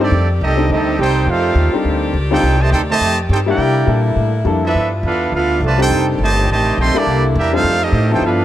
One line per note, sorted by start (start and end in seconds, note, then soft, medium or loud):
0.00 0.10 G2 medium
0.00 0.28 D#3 medium
0.00 0.10 G3 medium
0.00 3.56 G3 medium
0.00 0.29 A3 medium
0.00 0.10 C4 medium
0.00 0.29 C4 medium
0.00 0.10 D4 medium
0.00 0.29 D4 medium
0.00 0.11 D#4 medium
0.00 0.29 G4 medium
0.00 0.29 A4 medium
0.00 0.11 C5 medium
0.00 0.29 D5 medium
0.11 0.40 F2 loud
0.11 3.56 D#3 medium
0.11 3.56 G4 medium
0.11 3.56 D5 medium
0.41 0.69 C2 loud
0.41 0.68 A3 medium
0.41 0.68 C4 medium
0.41 0.69 C4 medium
0.41 0.68 D#4 medium
0.41 0.69 G4 medium
0.41 0.69 A4 medium
0.41 0.69 D#5 loud
0.57 0.96 G3 medium
0.57 0.96 C4 medium
0.57 0.96 D4 medium
0.57 0.96 D#4 medium
0.57 0.96 A4 medium
0.70 0.98 D2 medium
0.70 0.97 A3 medium
0.70 0.97 C4 medium
0.70 0.98 C4 medium
0.70 0.97 D#4 medium
0.70 0.98 G4 medium
0.70 0.98 A4 medium
0.70 0.98 D#5 medium
0.98 1.26 C2 medium
0.98 1.25 C4 loud
0.98 1.26 D#4 loud
0.98 1.27 D#4 loud
0.98 1.25 G4 loud
0.98 1.27 A4 medium
0.98 1.27 C5 loud
0.98 1.27 G5 loud
1.26 1.55 F2 medium
1.26 1.74 A3 loud
1.26 1.74 C4 loud
1.26 1.75 D#4 medium
1.26 1.74 F4 loud
1.26 1.75 A4 medium
1.26 1.75 C5 medium
1.26 1.75 F5 loud
1.55 1.72 D#2 loud
1.73 2.12 G3 medium
1.73 2.12 C4 medium
1.73 2.12 D4 medium
1.73 2.12 D#4 medium
1.73 2.13 A4 medium
1.85 2.13 D2 medium
2.14 2.42 C#2 loud
2.31 2.42 G3 medium
2.31 2.42 C4 medium
2.31 2.59 C4 medium
2.31 2.42 D4 medium
2.31 2.59 D#4 loud
2.31 2.42 D#4 medium
2.31 2.60 D#4 medium
2.31 2.43 F4 medium
2.31 2.59 G4 loud
2.31 2.60 A4 loud
2.31 2.60 C5 medium
2.31 2.60 G5 loud
2.43 2.71 C2 medium
2.60 2.72 C3 loud
2.60 2.72 D#3 loud
2.60 2.72 A3 loud
2.60 2.73 G4 medium
2.60 2.72 C5 medium
2.60 2.73 D#5 medium
2.60 2.73 A5 loud
2.72 3.00 D2 loud
2.72 2.80 C4 medium
2.72 2.80 D#4 medium
2.72 2.81 D#4 medium
2.72 2.81 G4 medium
2.72 2.81 A4 loud
2.72 2.81 C5 medium
2.72 2.81 G5 medium
2.90 3.17 C3 loud
2.90 3.17 D#3 loud
2.90 3.17 A3 loud
2.90 3.17 G4 loud
2.90 3.17 C5 medium
2.90 3.18 D#5 loud
2.90 3.17 A5 loud
3.01 3.29 F2 medium
3.29 3.57 G2 loud
3.29 3.39 C4 medium
3.29 3.39 D#4 medium
3.29 3.40 D#4 medium
3.29 3.39 G4 medium
3.29 3.40 A4 medium
3.29 3.39 C5 medium
3.29 3.40 G5 loud
3.46 3.85 G3 medium
3.46 3.86 A#3 medium
3.46 4.03 A#3 medium
3.46 3.86 D4 medium
3.46 3.86 E4 medium
3.46 4.02 E4 medium
3.46 4.03 E4 medium
3.46 3.86 G4 medium
3.46 4.02 G4 medium
3.46 4.03 A#4 medium
3.46 4.03 D5 medium
3.46 4.03 G5 loud
3.58 3.87 C3 loud
3.58 4.74 D3 medium
3.58 8.18 G3 medium
3.58 4.74 A#3 medium
3.58 4.74 E4 medium
3.87 4.16 A#2 loud
3.87 4.30 G3 medium
3.87 4.31 A#3 medium
3.87 4.31 D4 medium
3.87 4.31 E4 medium
3.87 4.31 A4 medium
4.16 4.44 A2 medium
4.45 4.74 F2 loud
4.45 4.61 G3 medium
4.45 4.61 A#3 medium
4.45 4.62 D4 medium
4.45 4.62 E4 medium
4.45 4.62 A4 medium
4.63 4.91 F3 medium
4.63 4.90 B3 medium
4.63 4.92 D4 medium
4.63 4.91 E4 medium
4.63 4.91 A4 medium
4.63 4.92 B4 medium
4.63 4.91 E5 medium
4.75 5.02 G2 medium
4.75 5.90 B3 medium
4.75 5.90 E4 medium
4.75 5.90 F4 medium
5.03 5.32 E2 medium
5.03 5.32 B3 medium
5.03 5.32 D4 medium
5.03 5.32 F4 medium
5.03 5.32 A4 medium
5.03 5.32 B4 medium
5.07 5.33 F5 medium
5.32 5.60 D2 medium
5.32 5.61 B3 medium
5.32 5.61 D4 medium
5.32 5.61 F4 medium
5.32 5.61 A4 medium
5.32 5.61 B4 medium
5.32 5.61 F5 medium
5.60 5.89 C2 loud
5.60 5.79 D3 medium
5.60 5.79 F3 medium
5.60 5.79 A3 medium
5.66 5.80 F4 medium
5.66 5.80 B4 medium
5.66 5.81 D5 medium
5.66 5.81 A5 medium
5.78 6.17 G3 medium
5.78 6.17 C4 medium
5.78 6.06 C4 medium
5.78 6.17 D4 medium
5.78 6.17 D#4 medium
5.78 6.06 D#4 medium
5.78 6.06 G4 medium
5.78 6.18 A4 medium
5.82 6.08 D#4 medium
5.82 6.08 A4 loud
5.82 6.08 C5 loud
5.82 6.08 G5 loud
5.90 6.18 F1 medium
5.90 7.06 D#3 medium
5.90 7.06 D4 medium
5.90 7.06 G4 medium
6.18 6.47 G1 medium
6.18 6.48 C3 medium
6.18 6.48 D#3 medium
6.18 6.47 A3 medium
6.23 6.48 G4 loud
6.23 6.49 C5 medium
6.23 6.49 D#5 loud
6.23 6.49 A5 loud
6.48 6.76 A1 medium
6.48 6.77 C3 loud
6.48 6.77 D#3 loud
6.48 6.77 A3 loud
6.48 6.77 G4 medium
6.48 6.77 C5 medium
6.48 6.77 D#5 medium
6.48 6.77 A5 loud
6.78 6.94 A#1 medium
6.78 6.96 D#3 loud
6.78 6.96 A3 loud
6.78 6.96 C4 loud
6.78 6.97 A4 loud
6.78 6.97 D#5 medium
6.78 6.97 G5 medium
6.78 6.97 C6 loud
6.94 7.33 G3 medium
6.94 7.33 A#3 medium
6.94 7.25 A#3 medium
6.94 7.33 D4 medium
6.94 7.25 D4 medium
6.94 7.33 E4 medium
6.94 7.26 E4 medium
6.94 7.25 G4 medium
6.94 7.34 A4 medium
6.94 7.25 D5 loud
6.99 7.26 G3 medium
6.99 7.26 A#3 medium
7.06 7.34 C2 medium
7.06 7.63 D3 medium
7.06 7.63 A#3 medium
7.06 7.64 E4 medium
7.35 7.63 E2 loud
7.35 7.54 G3 medium
7.35 7.53 A#3 medium
7.35 7.53 D4 medium
7.35 7.53 E4 medium
7.35 7.54 G4 medium
7.35 7.54 A#4 medium
7.35 7.53 E5 loud
7.53 7.63 G3 medium
7.53 7.82 A3 medium
7.53 7.64 C4 medium
7.53 7.82 C4 medium
7.53 7.63 D4 medium
7.53 7.64 D#4 medium
7.53 7.83 D#4 medium
7.53 7.84 F4 medium
7.53 7.64 A4 medium
7.53 7.83 A4 medium
7.53 7.83 C5 loud
7.53 7.83 F5 loud
7.63 7.92 F2 medium
7.63 8.22 D#3 medium
7.63 8.22 D4 medium
7.63 8.23 G4 medium
7.83 8.12 A3 medium
7.83 8.11 C4 medium
7.83 8.12 C4 medium
7.83 8.12 D#4 medium
7.83 8.12 G4 medium
7.83 8.12 A4 medium
7.83 8.12 D#5 loud
7.92 8.20 A2 loud
8.10 8.45 F3 medium
8.10 8.45 B3 medium
8.10 8.23 C4 medium
8.10 8.45 D4 medium
8.10 8.23 D#4 medium
8.10 8.45 E4 medium
8.10 8.23 G4 medium
8.10 8.45 A4 medium
8.10 8.23 C5 medium
8.14 8.23 A4 medium
8.14 8.23 G5 medium
8.21 8.45 G2 medium
8.21 8.45 A3 medium
8.21 8.45 B3 medium
8.25 8.45 B3 loud
8.25 8.45 D4 medium
8.25 8.45 F4 loud
8.25 8.45 A4 medium
8.25 8.45 B4 medium
8.25 8.45 F5 loud